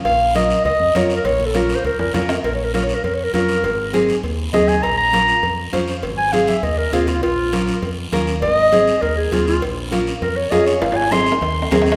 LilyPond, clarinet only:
\new Staff \with { instrumentName = "Clarinet" } { \time 4/4 \key bes \minor \tempo 4 = 201 f''4 ees''4 ees''4 \tuplet 3/2 { des''4 bes'8 } | \tuplet 3/2 { des''4 a'8 bes'4 c''8 } bes'8 bes'8 bes'8. r16 | \tuplet 3/2 { bes'8 des''8 bes'8 bes'8 des''8 bes'8 bes'8 des''8 bes'8 } bes'4~ | bes'4 r2 ees''8 aes''8 |
bes''8 bes''2 r4. | r8 aes''8 f''8 e''8 ees''8 bes'8 aes'8 f'8 | f'2 r2 | ees''2 bes'8 aes'8 f'8 f'8 |
r2 bes'8 des''8 ees''8 des''8 | f''8 aes''8 c'''2 r4 | }